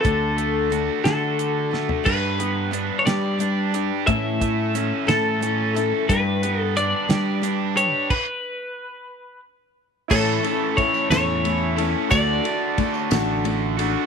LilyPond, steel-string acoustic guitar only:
\new Staff \with { instrumentName = "Steel-string acoustic guitar" } { \time 6/8 \key g \lydian \tempo 4. = 60 <d a d' fis' a'>4 <a d' fis' a'>8 <d a d' fis' a'>4 <d' fis' a'>8 | <g d' g' b'>8 <d' g' b'>8 <g d' g' b'>8 <g d' g' b'>8 <g d' g' b'>8 <d' g' b'>8 | <a, e a cis' e' a'>8 <a cis' e' a'>8 <a cis' e' a'>8 <a, e a cis' e' a'>8 <a cis' e' a'>8 <a cis' e' a'>8 | <g d' g' b'>8 <d' g' b'>8 <g d' g' b'>8 <g d' g' b'>8 <g d' g' b'>8 <d' g' b'>8 |
r2. | <a, e a cis' e' a'>8 <a cis' e' a'>8 <a cis' e' a'>8 <a, e a cis' e' a'>8 <a cis' e' a'>8 <a cis' e' a'>8 | <d a d' fis' a'>8 <d' fis' a'>8 <a d' fis' a'>8 <d a d' fis' a'>8 <a d' fis' a'>8 <d' fis' a'>8 | }